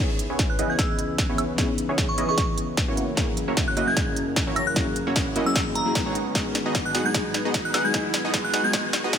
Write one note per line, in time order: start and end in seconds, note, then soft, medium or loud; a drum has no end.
0.00 2.94 C#2 medium
0.00 6.11 C#3 medium
0.00 0.66 E3 medium
0.00 6.11 E3 medium
0.00 0.10 B3 medium
0.00 0.67 B3 medium
0.00 0.10 C#4 medium
0.00 0.67 C#4 medium
0.00 0.68 D#4 medium
0.00 0.10 E4 medium
0.00 0.10 G#4 medium
0.00 0.68 G#4 loud
0.00 2.94 B4 medium
0.00 0.10 C#5 medium
0.00 riser medium
0.19 closed hi-hat medium
0.30 0.57 B3 medium
0.30 0.57 C#4 medium
0.30 0.57 E4 medium
0.30 0.57 G#4 medium
0.30 0.57 C#5 medium
0.39 kick loud
0.39 snare soft
0.39 closed hi-hat medium
0.50 0.56 F#6 medium
0.59 1.27 B3 medium
0.59 1.27 C#4 medium
0.59 1.27 E4 medium
0.59 1.27 G#4 medium
0.59 1.27 D#5 medium
0.59 0.66 F#6 medium
0.59 closed hi-hat medium
0.68 1.55 E3 medium
0.68 1.56 B3 medium
0.68 1.56 C#4 medium
0.68 1.57 D#5 medium
0.68 0.77 G#6 medium
0.72 1.57 G#4 loud
0.79 0.94 E6 medium
0.79 kick medium
0.79 snare soft
0.79 closed hi-hat medium
0.99 closed hi-hat medium
1.18 kick medium
1.18 snare soft
1.18 closed hi-hat medium
1.29 1.56 B3 medium
1.29 1.56 C#4 medium
1.29 1.56 E4 medium
1.29 1.56 G#4 medium
1.29 1.56 C#5 medium
1.38 closed hi-hat medium
1.38 high woodblock medium
1.56 2.25 E3 medium
1.56 2.26 B3 medium
1.56 1.69 B3 medium
1.56 2.26 C#4 medium
1.56 1.69 C#4 medium
1.56 2.27 D#4 medium
1.56 1.69 E4 medium
1.56 1.69 G#4 medium
1.56 2.27 G#4 loud
1.56 1.69 C#5 medium
1.56 kick medium
1.56 snare soft
1.56 closed hi-hat medium
1.78 closed hi-hat medium
1.89 2.16 B3 medium
1.89 2.16 C#4 medium
1.89 2.16 E4 medium
1.89 2.16 G#4 medium
1.89 2.16 C#5 medium
1.98 kick loud
1.98 snare soft
1.98 closed hi-hat medium
2.09 2.23 C#6 medium
2.18 2.86 B3 medium
2.18 2.86 C#4 medium
2.18 2.86 E4 medium
2.18 2.86 G#4 medium
2.18 2.86 D#5 medium
2.18 closed hi-hat medium
2.27 2.95 E3 medium
2.27 2.96 B3 medium
2.27 2.96 C#4 medium
2.27 2.97 G#4 medium
2.27 2.97 D#5 medium
2.27 2.34 C#6 medium
2.38 2.45 C#6 medium
2.38 kick medium
2.38 snare medium
2.38 closed hi-hat medium
2.58 closed hi-hat medium
2.77 kick medium
2.77 snare medium
2.77 closed hi-hat medium
2.88 3.15 A#3 medium
2.88 3.15 C#4 medium
2.88 3.15 E4 medium
2.88 3.15 F#4 medium
2.88 3.15 C#5 medium
2.97 6.12 F#2 medium
2.97 6.12 A#4 medium
2.97 closed hi-hat medium
3.15 3.84 F#3 medium
3.15 3.84 A#3 medium
3.15 3.28 A#3 medium
3.15 3.85 C#4 medium
3.15 3.28 C#4 medium
3.15 3.28 E4 medium
3.15 3.85 E4 medium
3.15 3.28 F#4 medium
3.15 3.28 C#5 medium
3.15 kick loud
3.15 snare medium
3.15 closed hi-hat medium
3.19 3.86 G#4 loud
3.37 closed hi-hat medium
3.48 3.75 A#3 medium
3.48 3.75 C#4 medium
3.48 3.75 E4 medium
3.48 3.75 F#4 medium
3.48 3.75 C#5 medium
3.57 kick loud
3.57 snare medium
3.57 closed hi-hat medium
3.68 3.74 F#6 medium
3.77 4.45 A#3 medium
3.77 4.45 C#4 medium
3.77 4.45 E4 medium
3.77 4.45 F#4 medium
3.77 4.45 D#5 medium
3.77 3.84 F#6 medium
3.77 closed hi-hat medium
3.85 4.73 F#3 medium
3.85 4.73 A#3 medium
3.85 4.74 C#4 medium
3.85 4.74 E4 medium
3.85 3.95 G#6 medium
3.90 4.75 G#4 loud
3.97 kick loud
3.97 snare medium
3.97 closed hi-hat medium
4.16 closed hi-hat medium
4.36 kick medium
4.36 snare medium
4.36 closed hi-hat medium
4.47 4.74 A#3 medium
4.47 4.74 C#4 medium
4.47 4.74 E4 medium
4.47 4.74 F#4 medium
4.47 4.74 C#5 medium
4.56 4.65 A#6 medium
4.56 closed hi-hat medium
4.56 high woodblock medium
4.67 4.81 F#6 medium
4.74 5.43 F#3 medium
4.74 5.43 A#3 medium
4.74 4.87 A#3 medium
4.74 5.44 C#4 medium
4.74 4.87 C#4 medium
4.74 4.87 E4 medium
4.74 5.44 E4 medium
4.74 4.87 F#4 medium
4.74 5.45 G#4 loud
4.74 4.87 C#5 medium
4.74 kick medium
4.74 snare medium
4.74 closed hi-hat medium
4.96 closed hi-hat medium
5.07 5.34 A#3 medium
5.07 5.34 C#4 medium
5.07 5.34 E4 medium
5.07 5.34 F#4 medium
5.07 5.34 C#5 medium
5.16 kick loud
5.16 snare medium
5.16 closed hi-hat medium
5.36 6.04 A#3 medium
5.36 6.04 C#4 medium
5.36 6.04 E4 medium
5.36 6.04 F#4 medium
5.36 6.04 D#5 medium
5.36 closed hi-hat medium
5.46 5.84 F#3 medium
5.46 5.84 A#3 medium
5.46 5.84 C#4 medium
5.46 5.84 E4 medium
5.46 5.85 G#4 loud
5.46 5.60 E6 medium
5.56 kick medium
5.56 snare medium
5.56 closed hi-hat medium
5.75 6.19 A#5 medium
5.75 closed hi-hat medium
5.85 5.93 F#3 loud
5.85 5.93 A#3 medium
5.85 5.93 C#4 medium
5.85 5.93 E4 medium
5.85 5.94 G#4 loud
5.94 6.32 F#3 medium
5.94 6.33 G#3 medium
5.94 6.33 B3 medium
5.94 6.33 D#4 medium
5.94 kick medium
5.94 snare medium
5.94 closed hi-hat medium
6.06 6.33 B3 medium
6.06 6.33 D#4 medium
6.06 6.33 F#4 medium
6.06 6.33 G#4 medium
6.06 6.33 C#5 medium
6.15 9.18 G#2 medium
6.15 9.18 D#3 medium
6.15 9.18 F#4 medium
6.15 9.18 B4 medium
6.15 closed hi-hat medium
6.33 7.02 F#3 medium
6.33 7.02 G#3 medium
6.33 7.03 B3 medium
6.33 6.46 B3 medium
6.33 6.46 D#4 medium
6.33 7.03 D#4 medium
6.33 6.46 F#4 medium
6.33 6.46 G#4 medium
6.33 7.04 G#4 medium
6.33 6.46 D#5 medium
6.33 kick loud
6.33 snare medium
6.33 closed hi-hat medium
6.55 snare medium
6.55 closed hi-hat medium
6.66 6.93 B3 medium
6.66 6.93 D#4 medium
6.66 6.93 F#4 medium
6.66 6.93 G#4 medium
6.66 6.93 D#5 medium
6.75 kick loud
6.75 snare medium
6.75 closed hi-hat medium
6.86 6.91 F#6 medium
6.95 7.13 B3 medium
6.95 7.13 D#4 medium
6.95 7.13 F#4 medium
6.95 7.13 G#4 medium
6.95 7.13 F#5 medium
6.95 7.02 F#6 medium
6.95 snare medium
6.95 closed hi-hat medium
7.03 7.11 F#3 medium
7.03 7.12 G#3 medium
7.03 7.13 B3 medium
7.03 7.14 D#4 medium
7.03 7.13 G#6 medium
7.07 7.14 G#4 medium
7.13 7.81 F#3 medium
7.13 7.82 G#3 medium
7.13 7.82 B3 medium
7.13 7.25 B3 medium
7.13 7.25 D#4 medium
7.13 7.83 D#4 medium
7.13 7.25 F#4 medium
7.13 7.25 G#4 medium
7.13 7.83 G#4 medium
7.13 7.25 D#5 medium
7.13 kick loud
7.13 snare medium
7.13 closed hi-hat medium
7.34 snare medium
7.34 closed hi-hat medium
7.45 7.72 B3 medium
7.45 7.72 D#4 medium
7.45 7.72 F#4 medium
7.45 7.72 G#4 medium
7.45 7.72 D#5 medium
7.54 kick loud
7.54 snare medium
7.54 closed hi-hat medium
7.65 7.71 F#6 medium
7.74 7.93 B3 medium
7.74 7.93 D#4 medium
7.74 7.93 F#4 medium
7.74 7.93 G#4 medium
7.74 7.93 F#5 medium
7.74 7.81 F#6 medium
7.74 snare medium
7.74 closed hi-hat medium
7.74 high woodblock medium
7.83 7.91 F#3 medium
7.83 7.92 G#3 medium
7.83 7.93 B3 medium
7.83 7.93 D#4 medium
7.83 7.94 G#4 loud
7.83 7.92 G#6 medium
7.92 8.61 F#3 medium
7.92 8.61 G#3 medium
7.92 8.05 B3 medium
7.92 8.05 D#4 medium
7.92 8.62 D#4 medium
7.92 8.05 F#4 medium
7.92 8.05 G#4 medium
7.92 8.05 D#5 medium
7.92 kick loud
7.92 snare medium
7.92 closed hi-hat medium
7.96 8.63 G#4 medium
8.14 snare medium
8.14 closed hi-hat medium
8.25 8.51 B3 medium
8.25 8.51 D#4 medium
8.25 8.51 F#4 medium
8.25 8.51 G#4 medium
8.25 8.51 D#5 medium
8.34 kick loud
8.34 snare medium
8.34 closed hi-hat medium
8.44 8.50 F#6 medium
8.53 8.72 B3 medium
8.53 8.72 D#4 medium
8.53 8.72 F#4 medium
8.53 8.72 G#4 medium
8.53 8.72 F#5 medium
8.53 8.60 F#6 medium
8.53 snare medium
8.53 closed hi-hat medium
8.62 8.70 F#3 medium
8.62 8.71 G#3 medium
8.62 8.72 B3 medium
8.62 8.73 D#4 medium
8.62 8.73 G#4 loud
8.62 8.72 G#6 medium
8.72 9.18 F#3 medium
8.72 9.18 G#3 medium
8.72 9.18 B3 medium
8.72 8.84 B3 medium
8.72 8.84 D#4 medium
8.72 9.18 D#4 medium
8.72 8.84 F#4 medium
8.72 8.84 G#4 medium
8.72 8.84 D#5 medium
8.72 kick loud
8.72 snare medium
8.72 closed hi-hat medium
8.76 9.18 G#4 loud
8.93 snare medium
8.93 closed hi-hat medium
9.04 9.18 B3 medium
9.04 9.18 D#4 medium
9.04 9.18 F#4 medium
9.04 9.18 G#4 medium
9.04 9.18 D#5 medium
9.13 kick medium
9.13 snare medium
9.13 closed hi-hat medium